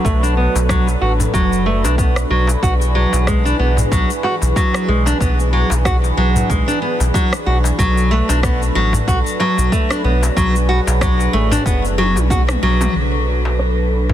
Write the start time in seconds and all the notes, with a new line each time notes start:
Already playing: F#3 D4 A4 B4
0.05 B1 A3, kick, shaker
0.23 D4, shaker
0.37 B3
0.55 B1, darbuka tek, shaker
0.69 F#3, kick, cross-stick, shaker
0.87 darbuka ka, shaker
1.01 A1 F#4
1.20 darbuka tek, darbuka dum, shaker
1.34 F#1 F#3, kick, shaker
1.53 shaker
1.66 A3, darbuka ka
1.84 B1 D4, darbuka tek, shaker
1.98 B3, kick, shaker
2.16 cross-stick, shaker
2.30 B1 F#3
2.47 darbuka tek, shaker
2.63 B1 E3 F#4 G#4, kick, shaker
2.82 shaker
2.95 F#3
3.13 B1, darbuka tek, shaker
3.27 G#3, kick, cross-stick, shaker
3.45 D4, shaker
3.59 B1 B3
3.77 darbuka tek, darbuka dum, shaker
3.92 B1 F#3, kick, shaker
4.10 shaker
4.23 F#4, darbuka tek
4.42 B1, darbuka ka, shaker
4.56 F#3, kick, shaker
4.74 cross-stick, shaker
4.88 B1 G#3, darbuka ka
5.06 D4, darbuka tek, shaker
5.20 B1 B3, kick, shaker
5.40 shaker
5.53 F#3
5.70 B1, darbuka tek, shaker
5.85 F#4, kick, cross-stick, shaker
6.04 darbuka ka, shaker
6.17 B1 F#3
6.36 darbuka tek, darbuka dum, shaker
6.50 B1 G#3, kick, shaker
6.68 D4, shaker
6.82 B3, darbuka ka
7.00 B1, darbuka tek, shaker
7.14 F#3, kick, shaker
7.33 cross-stick, shaker
7.46 B1 F#4
7.64 darbuka tek, shaker
7.79 B1 F#3 D4 A4 B4, kick, shaker
7.98 shaker
8.11 A3
8.29 B1 D4, darbuka tek, shaker
8.43 B3, kick, cross-stick, shaker
8.62 shaker
8.75 A1 F#3
8.93 darbuka tek, darbuka dum, shaker
9.08 B1 F#4, kick, shaker
9.27 shaker
9.40 F#3, darbuka tek
9.58 B1, darbuka ka, shaker
9.72 A3, kick, shaker
9.90 D4, cross-stick, shaker
10.04 B1 B3, darbuka ka
10.23 darbuka tek, shaker
10.37 B1 F#3 G#4, kick, shaker
10.56 shaker
10.69 F#4
10.87 B1, darbuka tek, shaker
11.01 F#3, kick, cross-stick, shaker
11.19 darbuka ka, shaker
11.33 A1 A3
11.51 D4, darbuka tek, darbuka dum, shaker
11.66 F#1 B3, kick, shaker
11.85 shaker
11.98 F#3, high tom, darbuka ka
12.16 B1, high tom, darbuka tek, shaker
12.30 F#4, kick, mid tom, shaker
12.49 cross-stick, mid tom, shaker
12.63 B1 F#3
12.81 mid tom, darbuka tek, shaker
12.95 B1 F#3 D4 A4 B4, shaker
13.14 shaker
13.45 darbuka tek, shaker
13.59 cross-stick, shaker
13.78 shaker
14.10 darbuka tek, darbuka dum